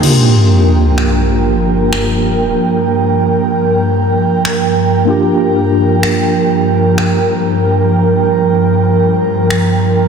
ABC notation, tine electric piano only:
X:1
M:4/4
L:1/8
Q:1/4=95
K:Gm
V:1 name="Tine electric piano"
[B,DFG]8- | [B,DFG]8 | [B,DFG]8- | [B,DFG]8 |]